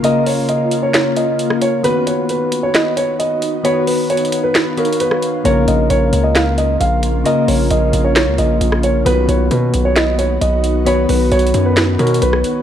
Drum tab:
HH |x-----o-----x-----x-----x-----x-----x-----x-----|x-----x-----x-----x-----x-----x-----x-----x-----|x-----o-----x-x-x-x-----x-----x-x-x-x-----x-----|x-----x-----x-----x-----x-----x-----x-----x-----|
CP |------------------------x-----------------------|------------------------x-----------------------|------------------------x-----------------------|------------------------x-----------------------|
SD |------------------------o--------------r--------|------------------------o-----------------------|------------------------o--------------r--------|------------------------o-----------------------|

HH |x-----o-----x-----x-----x-----x-----x-----x-----|x-----x-----x-----x-----x-----x-----x-----x-----|x-----o-----x-x-x-x-----x-----x-x-x-x-----x-----|
CP |------------------------x-----------------------|------------------------x-----------------------|------------------------x-----------------------|
SD |------------------------o--------------r--------|------------------------o-----------------------|------------------------o--------------r--------|